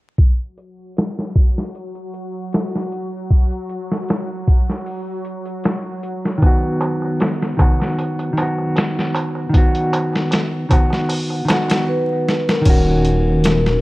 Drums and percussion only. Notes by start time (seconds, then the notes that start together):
0.19 kick, closed hi-hat
0.58 closed hi-hat
0.97 snare, closed hi-hat
1.19 snare
1.35 kick, closed hi-hat
1.58 snare
1.75 closed hi-hat
1.95 closed hi-hat
2.14 closed hi-hat
2.53 snare, closed hi-hat
2.75 snare
2.92 closed hi-hat
3.30 kick, closed hi-hat
3.51 closed hi-hat
3.69 closed hi-hat
3.91 snare
4.08 snare, closed hi-hat
4.47 kick, closed hi-hat
4.69 snare
4.86 open hi-hat
5.25 closed hi-hat
5.46 closed hi-hat
5.64 snare, closed hi-hat
6.03 closed hi-hat
6.25 snare
6.42 kick, closed hi-hat, darbuka tek
6.81 closed hi-hat, darbuka tek
7.02 darbuka tek
7.20 snare, closed hi-hat, darbuka tek
7.43 snare
7.59 kick, closed hi-hat, darbuka tek, darbuka dum
7.80 snare, darbuka tek
7.98 closed hi-hat, darbuka tek
8.19 closed hi-hat, darbuka tek
8.37 closed hi-hat, darbuka tek
8.58 darbuka tek
8.76 snare, closed hi-hat, darbuka tek
8.99 snare
9.14 closed hi-hat, darbuka tek
9.35 darbuka tek
9.54 kick, closed hi-hat, darbuka tek
9.75 closed hi-hat
9.93 closed hi-hat, darbuka tek
10.13 snare, darbuka tek
10.31 snare, closed hi-hat, darbuka tek
10.70 kick, closed hi-hat, darbuka tek, darbuka dum
10.90 snare, darbuka tek
11.09 open hi-hat, darbuka tek
11.30 darbuka tek
11.48 snare, closed hi-hat, darbuka tek
11.68 snare, closed hi-hat, darbuka tek
12.28 snare
12.49 snare
12.65 kick, closed hi-hat, crash
13.05 closed hi-hat
13.44 snare, closed hi-hat
13.66 snare